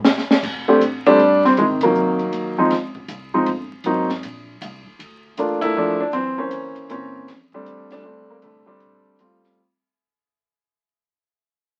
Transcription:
0.04 snare
0.18 snare
0.31 snare
0.43 F1, kick, crash
0.68 A3 C4 D4 G4
0.80 A1, kick, hi-hat pedal, ride
1.06 G3 A3 C4 D4 G4, ride
1.18 A2, kick, ride
1.44 C4, snare
1.56 G#2 C3 D#3 G#3, kick, ride
1.81 F#3 A#3, kick, ride
1.85 D#3
1.94 F#2, hi-hat pedal
2.19 ride
2.32 D#2, kick, ride
2.58 F3 G#3 C4 D#4
2.70 C#2, kick, snare, ride
2.95 kick
3.08 C2, kick, hi-hat pedal, ride
3.34 F3 G#3 C4 D#4
3.46 G1, kick, ride
3.72 muted upright bass stroke
3.84 G#1 F#3 A#3 C4 D#4, kick, ride
4.09 snare
4.23 A#1, kick, hi-hat pedal, ride
4.61 C2, kick, hi-hat pedal, ride
4.87 muted upright bass stroke
4.99 D2, kick, ride
5.37 E2 A3 A#3 D4 F4, kick, hi-hat pedal, ride
5.61 A3 A#3 E4, kick, ride
5.75 F2 F3 A3 A#3 D4
6.00 D4
6.13 F#2 E3 C4, ride
6.38 E3 A#3 C#4 C5
6.51 C#3, kick, hi-hat pedal, ride
6.75 muted upright bass stroke, kick, ride
6.89 A#2 E3 A#3 C4 C#4, kick, hi-hat pedal, ride
7.28 F2, snare, ride
7.52 G3 A3 C4 D4, kick
7.66 E2, kick, hi-hat pedal, ride
7.90 G3 A3 D4, snare, ride
8.03 D2 G3 A3 C4 D4
8.17 C2
8.30 A1 A#3
8.42 C2 C3 D3 A3, ride
8.66 G3 A3 C4 D4
8.80 A#1, ride
9.05 kick
9.19 A1 G3 A3 C4 F4, hi-hat pedal, ride
9.44 snare

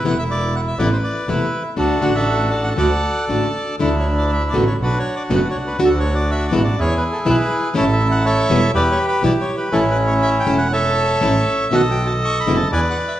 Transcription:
Already playing: E4
0.04 E1 C3 E3 A3 B3 E4 F#5
0.19 E5
0.31 D5
0.56 F#5
0.68 E5
0.78 A1 C3 E3 A3 B3 E4 B4 D5
0.93 C5
1.04 D5
1.28 E1 C3 E3 A3 B3 E4 B4
1.76 D2 D3 A3 D4 F#4 A4
2.02 A1 D3 A3 D4 F#4 F#5
2.15 A4 E5
2.51 D5
2.64 F#5
2.76 D2 D3 A3 D4 F#4 A4 D5 F#5
3.28 A1 D3 A3 D4 F#4
3.79 D2 D3 A3 D4 E4 A4
3.99 C#5
4.17 D5
4.33 E5
4.50 B2 D3 A3 D5
4.54 A1 B3 F#4
4.67 C#5
4.79 B1 D4 F#4 B4
4.99 C#5
5.16 D5
5.30 F#1 B2 D3 A3 B3 F#4
5.35 B4
5.50 C#5
5.55 C2
5.67 B4
5.79 D2 D3 A3 D4 F#4
5.84 D4 F#4 A4
5.99 C#5
6.15 D5
6.31 E5
6.48 B2 E3 D5
6.52 A1 G#3 B3 E4
6.64 D5
6.77 E2 E4 G#4 C#5
6.97 B4
7.12 A4
7.25 B1 B2 E3 G#3 B3 E4 G#4
7.30 B4
7.74 A1 E3 A3 C#4 E4 A4 C#5
7.93 E5
8.11 F#5
8.25 A4 C#5 E5
8.49 E1 B2 E3 G3 B3 E4
8.73 E2 G4 B4 D5
8.92 C#5
9.08 B4
9.22 B1 B2 E3 G3 B3 E4 D5
9.41 C#5
9.57 B4
9.72 A1 E3 A3 C#4 E4 A4
9.91 B4
10.07 C#5
10.22 E5
10.40 G5
10.46 E1 E3 A3 C#4 E4
10.58 F#5
10.72 A4 C#5 E5
11.21 A1 E3 A3 C#4 E4
11.47 A1
11.71 B1 B2 D#3 A3 B3 F#4 A4 D#5 F#5
11.91 G5
12.06 A5
12.25 C#6
12.40 B5
12.46 F#1 B2 D3 G#3 B3 E4
12.56 A5
12.71 E2 B4 D5 G#5
12.90 F#5
13.08 E5

